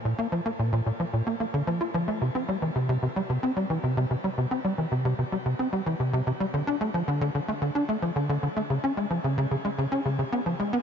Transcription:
\new Staff \with { instrumentName = "Analog synth bass" } { \clef bass \time 4/4 \key c \mixolydian \tempo 4 = 111 bes,16 bes16 f16 bes16 bes,16 bes,16 bes,16 f16 bes,16 bes16 bes16 d16 f16 f'16 f16 a16 | c16 c'16 g16 e16 c16 c16 c16 g16 c16 c'16 g16 e16 c16 c16 c16 g16 | c16 c'16 g16 e16 c16 c16 c16 g16 c16 c'16 g16 e16 c16 c16 c16 g16 | d16 d'16 a16 f16 d16 d16 d16 a16 d16 d'16 a16 f16 d16 d16 d16 a16 |
cis16 cis'16 gis16 eis16 cis16 cis16 cis16 gis16 cis16 cis'16 cis16 cis16 b16 eis16 gis16 b16 | }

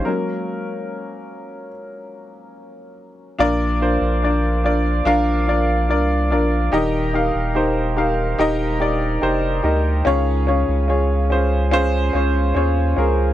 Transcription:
<<
  \new Staff \with { instrumentName = "Glass harmonica" } { \time 4/4 \key ees \lydian \tempo 4 = 72 << { r1 | <d'' f'' d'''>1 | <ees' g'' bes''>1 | <des' f'' aes''>1 | } \\ { r1 | bes'1~ | bes'1 | aes'1 | } >> }
  \new Staff \with { instrumentName = "Upright piano" } { \time 4/4 \key ees \lydian bes'2 r2 | <d' f' bes' d''>8 <d' f' bes' c''>8 <d' f' bes' d''>8 <d' f' bes' d''>8 <d' f' bes' f''>8 <d' f' bes' d''>8 <d' f' bes' d''>8 <d' f' bes' d''>8 | <ees' g' bes' ees''>8 <ees' g' bes' f''>8 <ees' g' bes' c''>8 <ees' g' bes' f''>8 <ees' g' bes' ees''>8 <ees' g' bes' d''>8 <ees' g' bes' c''>8 <ees' g' bes' ees''>8 | <des' f' aes' des''>8 <des' f' aes' des''>8 <des' f' aes' des''>8 <des' f' aes' c''>8 <des' f' aes' c''>8 <des' f' aes' des''>8 <des' f' aes' des''>8 <des' f' aes' bes'>8 | }
  \new Staff \with { instrumentName = "Upright piano" } { \clef bass \time 4/4 \key ees \lydian <ges bes des'>8 r2. r8 | bes,4. r2 r8 | ees4. r2 r8 | des4. r2 r8 | }
  \new Staff \with { instrumentName = "Sub bass" } { \clef bass \time 4/4 \key ees \lydian r1 | bes,,8. bes,,4~ bes,,16 bes,,4 c,8 bes,,8 | ees,,8. ees,,4~ ees,,16 ees,,4 f,,8 d,8 | des,8. des,4.~ des,16 des,8 ees,8 des,8 | }
>>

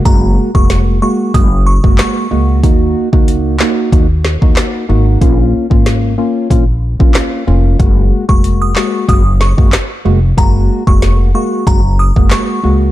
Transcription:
<<
  \new Staff \with { instrumentName = "Synth bell" } { \time 4/4 \key fis \major \tempo 4 = 93 ais''16 r8 cis'''16 r8 cis'''16 r16 dis'''16 r16 cis'''16 r16 cis'''8. r16 | r1 | r1 | r8. cis'''16 r16 dis'''16 cis'''16 r16 dis'''16 r16 cis'''16 r4 r16 |
ais''16 r8 cis'''16 r8 cis'''16 r16 ais''16 r16 dis'''16 r16 cis'''8. r16 | }
  \new Staff \with { instrumentName = "Synth stab" } { \time 4/4 \key fis \major <gis ais fis'>8. <gis ais fis'>8. <gis ais fis'>8 <gis ais fis'>16 r8 <gis ais fis'>8. <gis ais fis'>8 | <ais dis' fis'>8. <ais dis' fis'>8. <ais dis' fis'>8 <ais dis' fis'>16 r8 <ais dis' fis'>8. <ais dis' fis'>8 | <ais cis' eis'>8. <ais cis' eis'>8. <ais cis' eis'>8 <ais cis' eis'>16 r8 <ais cis' eis'>8. <ais cis' eis'>8 | <gis ais fis'>8. <gis ais fis'>8. <gis ais fis'>8 <gis ais fis'>16 r8 <gis ais fis'>16 r8 <gis ais fis'>16 r16 |
<gis ais fis'>8. <gis ais fis'>8. <gis ais fis'>8 <gis ais fis'>16 r8 <gis ais fis'>8. <gis ais fis'>8 | }
  \new Staff \with { instrumentName = "Upright bass" } { \clef bass \time 4/4 \key fis \major fis,,8 r16 eis,,8. r8 fis,,8. fis,,16 r8 cis,8 | dis,8 r16 cis,8. r8 dis,8. dis,16 r8 gis,,8 | ais,,8 r16 gis,,8. r8 ais,,8. ais,,16 r8 eis,,8 | fis,,8 r16 eis,,8. r8 fis,,8. fis,,16 r8 eis,,8 |
fis,,8 r16 eis,,8. r8 fis,,8. fis,,16 r8 cis,8 | }
  \new DrumStaff \with { instrumentName = "Drums" } \drummode { \time 4/4 <hh bd>8. bd16 <hh sn>4 <hh bd>8. bd16 <hc hh ss sn>4 | <hh bd>8. bd16 hh8 <hc sn>8 <hh bd>8 sn16 bd16 <hc hh ss sn>4 | <hh bd>8. bd16 <hh sn>4 <hh bd>8. bd16 <hc hh ss sn>4 | <hh bd>8. bd16 hh8 <hc sn>8 <hh bd>8 sn16 bd16 <hc hh ss sn>4 |
<hh bd>8. bd16 <hh sn>4 <hh bd>8. bd16 <hc hh ss sn>4 | }
>>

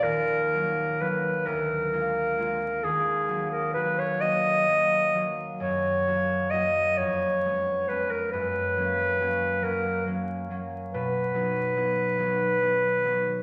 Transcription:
<<
  \new Staff \with { instrumentName = "Clarinet" } { \time 6/8 \key ees \minor \tempo 4. = 44 bes'4 ces''8 bes'4. | aes'8. bes'16 ces''16 des''16 ees''4~ ees''16 r16 | des''4 ees''8 des''4 ces''16 bes'16 | ces''4. bes'8 r4 |
b'2. | }
  \new Staff \with { instrumentName = "Harp" } { \time 6/8 \key ees \minor <ees, bes bes'>8 <ges bes ees'>8 <ges bes ees'>8 d,8 <aes bes f'>8 <aes bes f'>8 | ees,8 <ges bes ges'>8 <ges bes ges'>8 <ges bes ges'>8 <ges bes ges'>8 <ges bes ges'>8 | ges,8 <ges bes ges'>8 <ges bes ges'>8 f,8 <aes ces' des'>8 <aes ces' des'>8 | ges,8 <ges bes des'>8 <ges bes des'>8 <ges bes des'>8 <ges bes des'>8 <ges bes des'>8 |
b,8 <fis b dis'>8 <fis b dis'>8 <fis b dis'>8 <fis b dis'>8 <fis b dis'>8 | }
>>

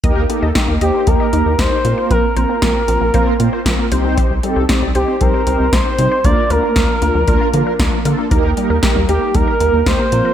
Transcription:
<<
  \new Staff \with { instrumentName = "Analog synth lead" } { \time 4/4 \key ees \major \tempo 4 = 116 r4. g'8 bes'4 c''4 | bes'8 bes'2. r8 | r4. g'8 bes'4 c''4 | d''8 bes'2. r8 |
r4. g'8 bes'4 c''4 | }
  \new Staff \with { instrumentName = "Analog polysynth" } { \time 4/4 \key ees \major <bes ees' g' bes'>8 <bes ees' g' a'>8 <bes ees' g' bes'>8 <bes ees' g' c''>8 <bes ees' g' bes'>8 <bes ees' g' bes'>8 <bes ees' g' bes'>8 <bes c' f' bes'>8~ | <bes c' f' bes'>8 <bes c' f' bes'>8 <bes c' f' g'>8 <bes c' f' bes'>8 <bes c' f' bes'>8 <bes c' f' c''>8 <bes c' f' bes'>8 <c' ees' g' c''>8~ | <c' ees' g' c''>8 <c' ees' g' a'>8 <c' ees' g' d''>8 <c' ees' g' c''>8 <c' ees' g' c''>8 <c' ees' g' c''>8 <c' ees' g' c''>8 <c' ees' g' c''>8 | <bes d' f' bes'>8 <bes d' f' bes'>8 <bes d' f' bes'>8 <bes d' f' bes'>8 <bes d' f' bes'>8 <bes d' f' bes'>8 <bes d' f' bes'>8 <bes d' f' a'>8 |
<bes ees' g' bes'>8 <bes ees' g' bes'>8 <bes ees' g' bes'>8 <bes ees' g' bes'>8 <bes ees' g' bes'>8 <bes ees' g' bes'>8 <bes ees' g' bes'>8 <bes c' f' bes'>8 | }
  \new Staff \with { instrumentName = "Synth arpeggio sound" } { \time 4/4 \key ees \major ees''16 r16 bes16 ees''16 ees'16 bes16 ees''16 ees'16 bes16 ees''16 ees'16 r16 ees''16 ees'16 bes16 c''16 | c'16 r16 c''16 c'16 bes16 r16 c'16 bes16 c''16 c'16 bes16 c''16 c'16 bes16 c''16 c'16 | c''16 r16 g16 c''16 c'16 g16 c''16 c'16 g16 c''16 c'16 r16 c''16 c'16 g16 c''16 | bes16 r16 bes'16 bes16 f16 r16 bes16 f16 bes'16 bes16 f16 bes'16 bes16 f16 bes'16 bes16 |
bes'16 r16 g16 bes'16 bes16 g16 bes'16 bes16 g16 bes'16 bes16 r16 bes'16 bes16 f16 bes'16 | }
  \new Staff \with { instrumentName = "Analog synth bass" } { \clef bass \time 4/4 \key ees \major ees,16 ees,16 r16 ees,16 r16 ees,16 ees,16 r16 ees,16 r16 ees,16 ees,16 ees,16 r16 bes,16 r16 | bes,,16 r16 bes,,16 r16 bes,,16 r16 bes,,16 bes,,16 bes,,16 r16 bes,16 r16 bes,,16 r16 c,8~ | c,16 c,16 r16 c,16 r16 c,16 c,16 r16 c,16 r16 c,16 c,16 c,16 r16 c16 r16 | d,16 r16 d,16 r16 d,16 r16 d,16 d,16 d,16 r16 d16 r16 d,16 r16 d16 r16 |
ees,16 ees,16 r16 ees,16 r16 ees,16 ees,16 r16 ees,16 r16 ees,16 ees,16 ees,16 r16 bes,16 r16 | }
  \new DrumStaff \with { instrumentName = "Drums" } \drummode { \time 4/4 <hh bd>8 hh8 <hh bd sn>8 hh8 <hh bd>8 hh8 <hh bd sn>8 hh8 | <hh bd>8 hh8 <hh bd sn>8 hh8 <hh bd>8 hh8 <hh bd sn>8 hh8 | <hh bd>8 hh8 <hh bd sn>8 hh8 <hh bd>8 hh8 <hh bd sn>8 hh8 | <hh bd>8 hh8 <hh bd sn>8 hh8 <hh bd>8 hh8 <hh bd sn>8 hh8 |
<hh bd>8 hh8 <hh bd sn>8 hh8 <hh bd>8 hh8 <hh bd sn>8 hh8 | }
>>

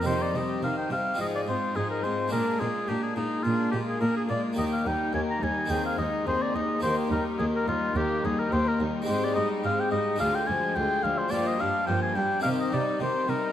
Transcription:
<<
  \new Staff \with { instrumentName = "Oboe" } { \time 4/4 \key ees \major \tempo 4 = 107 c''16 d''16 ees''8 f''16 g''16 f''8 ees''16 d''16 c''8 aes'16 bes'16 c''8 | bes'8 aes'8 g'16 aes'16 ees'8 f'8 g'16 aes'16 bes'16 aes'16 d''8 | ees''16 f''16 g''8 aes''16 bes''16 aes''8 g''16 f''16 ees''8 c''16 d''16 ees''8 | c''8 bes'8 aes'16 bes'16 f'8 g'8 aes'16 bes'16 c''16 bes'16 r8 |
c''16 d''16 ees''8 f''16 g''16 ees''8 f''16 g''16 aes''8 g''8 f''16 c''16 | d''16 ees''16 f''8 g''16 aes''16 g''8 f''16 ees''16 d''8 c''8 bes'8 | }
  \new Staff \with { instrumentName = "Violin section" } { \time 4/4 \key ees \major c''8 g'8 c''8 g'8 aes'8 f'8 aes'8 f'8 | aes'8 f'8 aes'8 f'8 aes'8 f'8 aes'8 f'8 | g'8 ees'8 g'8 ees'8 aes'8 ees'8 aes'8 ees'8 | g'8 ees'8 g'8 ees'8 g'8 ees'8 g'8 ees'8 |
g'8 ees'8 g'8 ees'8 f'8 d'8 f'8 d'8 | f'8 d'8 f'8 d'8 g'8 ees'8 g'8 ees'8 | }
  \new Staff \with { instrumentName = "Violin section" } { \time 4/4 \key ees \major ees'8 c'8 ees'8 c'8 ees'8 c'8 ees'8 c'8 | d'8 bes8 d'8 bes8 d'8 bes8 d'8 bes8 | bes8 ees'8 bes8 ees'8 c'8 ees'8 c'8 ees'8 | bes8 ees'8 bes8 ees'8 bes8 ees'8 bes8 ees'8 |
c'8 ees'8 c'8 ees'8 aes8 aes8 aes8 aes8 | bes8 d'8 bes8 d'8 c'8 ees'8 c'8 ees'8 | }
  \new Staff \with { instrumentName = "Viola section" } { \clef bass \time 4/4 \key ees \major ees8 g8 ees8 g8 f8 aes8 f8 aes8 | bes8 aes8 bes8 aes8 bes8 aes8 bes8 aes8 | ees8 g8 ees8 g8 ees8 aes8 ees8 aes8 | ees8 g8 ees8 g8 ees8 g8 ees8 g8 |
aes8 g8 aes8 g8 d8 f8 d8 f8 | f8 g8 f8 g8 ees8 g8 ees8 g8 | }
  \new Staff \with { instrumentName = "Harpsichord" } { \time 4/4 \key ees \major <c' ees' g'>2 <c' ees' f'>2 | <aes d' f'>1 | <bes ees' g'>2 <c' ees' aes'>2 | <bes ees' g'>1 |
<aes c' ees' g'>2 <aes d' f'>2 | <bes d' g'>2 <c' ees' g'>2 | }
  \new Staff \with { instrumentName = "Harpsichord" } { \clef bass \time 4/4 \key ees \major c8 c8 c8 c8 aes,8 aes,8 aes,8 aes,8 | bes,8 bes,8 bes,8 bes,8 bes,8 bes,8 bes,8 bes,8 | ees,8 ees,8 ees,8 ees,8 ees,8 ees,8 ees,8 ees,8 | ees,8 ees,8 ees,8 ees,8 ees,8 ees,8 ees,8 ees,8 |
aes,8 aes,8 aes,8 aes,8 d,8 d,8 d,8 d,8 | g,8 g,8 g,8 g,8 c8 c8 c8 c8 | }
  \new Staff \with { instrumentName = "Cello section" } { \clef bass \time 4/4 \key ees \major c8 c8 c8 c8 aes,8 aes,8 aes,8 aes,8 | bes,8 bes,8 bes,8 bes,8 bes,8 bes,8 bes,8 bes,8 | ees,8 ees,8 ees,8 ees,8 ees,8 ees,8 ees,8 ees,8 | ees,8 ees,8 ees,8 ees,8 ees,8 ees,8 ees,8 ees,8 |
aes,8 aes,8 aes,8 aes,8 d,8 d,8 d,8 d,8 | g,8 g,8 g,8 g,8 c8 c8 c8 c8 | }
>>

